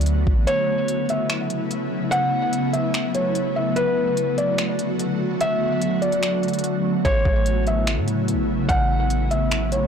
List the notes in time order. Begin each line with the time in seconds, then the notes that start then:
Already playing: D2 D3 F#3 A3 B3 F#4 D5
0.01 closed hi-hat
0.06 closed hi-hat
0.27 A1, kick
0.47 C#3 F#3 A3 E4 C#5, closed hi-hat
0.88 closed hi-hat
1.09 E5, closed hi-hat
1.30 finger snap, closed hi-hat
1.50 closed hi-hat
1.71 closed hi-hat
2.11 F#5, closed hi-hat
2.53 closed hi-hat
2.73 E5, closed hi-hat
2.94 finger snap, closed hi-hat
3.15 C#5, closed hi-hat
3.35 closed hi-hat
3.56 E5
3.76 D3 F#4 B4, closed hi-hat
4.17 closed hi-hat
4.38 D5, closed hi-hat
4.58 finger snap, closed hi-hat
4.79 closed hi-hat
4.99 closed hi-hat
5.41 E5, closed hi-hat
5.82 closed hi-hat
6.02 D5, closed hi-hat
6.12 closed hi-hat
6.23 finger snap, closed hi-hat
6.43 closed hi-hat
6.48 closed hi-hat
6.54 closed hi-hat
6.59 closed hi-hat
6.64 closed hi-hat
7.05 A1 C#3 B3 E4 C#5, kick, closed hi-hat
7.25 A1, kick
7.46 closed hi-hat
7.67 E5, closed hi-hat
7.87 finger snap, closed hi-hat
7.97 A2
8.08 closed hi-hat
8.28 closed hi-hat
8.33 A1
8.69 A1 F#5, kick, closed hi-hat
9.10 closed hi-hat
9.31 E5, closed hi-hat
9.51 finger snap, closed hi-hat
9.72 C#5, closed hi-hat